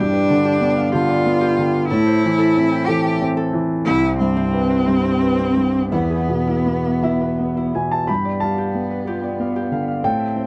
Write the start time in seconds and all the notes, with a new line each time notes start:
Already playing: G2 D4 G4 B4
0.13 B4
0.30 D3
0.45 G4
0.61 B3
0.76 F5
0.92 D3 F4 G4
1.09 D5
1.26 B3
1.41 G4
1.59 D3
1.89 A2 E4 A4
2.06 C5
2.25 E3
2.38 A4
2.57 C4
2.72 G5
2.86 E3 G4 A4
3.04 E5
3.21 C4
3.37 A4
3.53 E3
3.85 C2 C4 E4
4.03 E4
4.19 G2 C4
4.37 C4
4.53 B4
4.70 B4
4.87 G2 C4
5.04 G4
5.22 B4
5.39 C4
5.56 G2
5.91 E2 B3 E4
6.10 G#4
6.29 B2
6.47 E4
6.66 B3
6.85 E5
7.03 B2 E4 E5
7.21 B4
7.40 B3
7.57 E4
7.75 B2 G#5
7.92 A5
8.07 G2 B3 G4 B5
8.25 D5
8.40 G3 F5 A5
8.58 G4
8.75 B3
8.91 B4
9.07 F4 G4
9.23 D5
9.40 B3 F5
9.56 G4
9.71 D3 F5
9.88 F5
10.03 A2 C4 A4 G5
10.20 E5
10.36 C4 G5